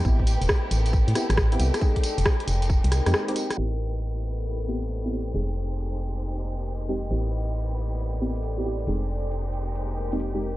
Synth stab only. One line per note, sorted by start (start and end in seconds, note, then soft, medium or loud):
0.05 0.16 B3 medium
0.05 0.16 C4 medium
0.05 0.16 E4 medium
0.05 0.16 G4 medium
1.15 1.27 B3 medium
1.15 1.27 C4 medium
1.15 1.27 E4 medium
1.15 1.27 G4 medium
1.52 1.58 B3 medium
1.52 1.58 C4 medium
1.52 1.58 E4 medium
1.52 1.58 G4 medium
1.59 1.80 B3 medium
1.59 1.80 C4 medium
1.59 1.80 E4 medium
1.59 1.80 G4 medium
1.81 1.98 G#3 medium
1.81 1.98 C4 medium
1.81 1.98 D#4 medium
1.81 1.98 G#4 medium
3.06 3.25 G#3 medium
3.06 3.25 C4 medium
3.06 3.25 D#4 medium
3.06 3.25 G4 loud
3.28 3.56 G#3 medium
3.28 3.56 C4 medium
3.28 3.56 D#4 medium
3.28 3.56 G4 medium
3.58 3.69 B3 medium
3.58 3.69 C4 medium
3.58 3.69 E4 medium
3.58 3.69 G4 medium
4.68 4.80 B3 medium
4.68 4.80 C4 medium
4.68 4.80 E4 medium
4.68 4.80 G4 medium
5.05 5.10 B3 medium
5.05 5.10 C4 medium
5.05 5.10 E4 medium
5.05 5.10 G4 medium
5.12 5.33 B3 medium
5.12 5.33 C4 medium
5.12 5.33 E4 medium
5.12 5.33 G4 medium
5.34 5.51 G#3 medium
5.34 5.51 C4 medium
5.34 5.51 D#4 medium
5.34 5.51 G#4 medium
6.89 7.09 G#3 medium
6.89 7.09 C4 medium
6.89 7.09 D#4 medium
6.89 7.09 G4 loud
7.11 7.22 B3 medium
7.11 7.22 C4 medium
7.11 7.22 E4 medium
7.11 7.22 G4 medium
8.21 8.33 B3 medium
8.21 8.33 C4 medium
8.21 8.33 E4 medium
8.21 8.33 G4 medium
8.58 8.63 B3 medium
8.58 8.63 C4 medium
8.58 8.63 E4 medium
8.58 8.63 G4 medium
8.65 8.85 B3 medium
8.65 8.86 C4 medium
8.65 8.85 E4 medium
8.65 8.86 G4 medium
8.87 9.04 G#3 medium
8.87 9.04 C4 medium
8.87 9.04 D#4 medium
8.87 9.04 G#4 medium
10.12 10.31 G#3 medium
10.12 10.31 C4 medium
10.12 10.31 D#4 medium
10.12 10.31 G4 loud
10.34 10.57 G#3 medium
10.34 10.57 C4 medium
10.34 10.57 D#4 medium
10.34 10.57 G4 medium